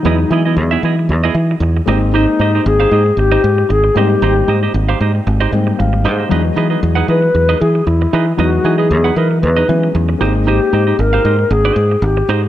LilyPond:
<<
  \new Staff \with { instrumentName = "Alto flute" } { \time 4/4 \key aes \major \tempo 4 = 115 dis'4 r2. | ees'4 aes'4 g'4 aes'8 g'8~ | g'4 r2. | r4. b'4 gis'8 e'4 |
ges'8. gis'8. bes'8 b'4 r4 | g'4 bes'4 aes'4 g'4 | }
  \new Staff \with { instrumentName = "Clean electric guitar" } { \time 4/4 \key aes \major <b e' gis' dis''>16 r16 <b e' gis' dis''>16 <b e' gis' dis''>16 r16 <b e' gis' e''>16 <b e' gis' dis''>16 r8 <b e' gis' dis''>16 r4 <ees' g' c'' ees''>16 r16 | <ees' g' c'' ees''>16 r16 <ees' g' c'' ees''>16 <ees' g' c'' ees''>16 r16 <ees' g' c'' f''>16 <ees' g' c'' ees''>16 r8 <ees' g' c'' ees''>16 r4 <ees' g' c'' ees''>16 r16 | <ees' g' c'' ees''>16 r16 <ees' g' c'' ees''>16 <ees' g' c'' ees''>16 r16 <ees' g' c'' f''>16 <ees' g' c'' ees''>16 r8 <ees' g' c'' ees''>16 r4 <ees' g' c'' ees''>16 <ees' g' c'' ees''>16 | <dis' gis' b' dis''>16 r16 <dis' gis' b' dis''>16 <dis' gis' b' dis''>16 r16 <dis' gis' b' ges''>16 <dis' gis' b' dis''>16 r8 <dis' gis' b' dis''>16 r4 <dis' gis' b' dis''>16 r16 |
<dis' gis' b' dis''>16 r16 <dis' gis' b' dis''>16 <dis' gis' b' dis''>16 r16 <dis' gis' b' ges''>16 <dis' gis' b' dis''>16 r8 <dis' gis' b' dis''>16 r4 <ees' g' c'' ees''>16 r16 | <ees' g' c'' ees''>16 r16 <ees' g' c'' ees''>16 <ees' g' c'' ees''>16 r16 <ees' g' c'' f''>16 <ees' g' c'' ees''>16 r8 <ees' g' c'' ees''>8 r8. <ees' g' c'' ees''>16 r16 | }
  \new Staff \with { instrumentName = "Grand piano" } { \time 4/4 \key aes \major r1 | r1 | r2. f''8 ees''8 | r1 |
r1 | r1 | }
  \new Staff \with { instrumentName = "Grand piano" } { \time 4/4 \key aes \major <ges gis b dis'>2.~ <ges gis b dis'>8 <aes bes c' ees'>8~ | <aes bes c' ees'>2.~ <aes bes c' ees'>8 <g bes c' ees'>8~ | <g bes c' ees'>2~ <g bes c' ees'>8 <g bes c' ees'>4. | <ges gis b d' dis''>1 |
<ges gis b dis'>2~ <ges gis b dis'>8 <ges gis b des'>4 <aes bes c' ees'>8~ | <aes bes c' ees'>2.~ <aes bes c' ees'>8 r8 | }
  \new Staff \with { instrumentName = "Fingered electric bass" } { \clef bass \time 4/4 \key aes \major e,8 e8 e,8 e8 e,8 e8 e,8 aes,,8~ | aes,,8 aes,8 aes,,8 aes,8 aes,,8 aes,8 aes,,8 aes,8 | aes,,8 aes,8 aes,,8 aes,8 aes,,8 aes,8 aes,,8 aes,8 | e,8 e8 e,8 e8 e,8 e8 e,8 e8 |
e,8 e8 e,8 e8 e,8 e8 e,8 aes,,8~ | aes,,8 aes,8 aes,,8 aes,8 aes,,8 aes,8 aes,,8 aes,8 | }
>>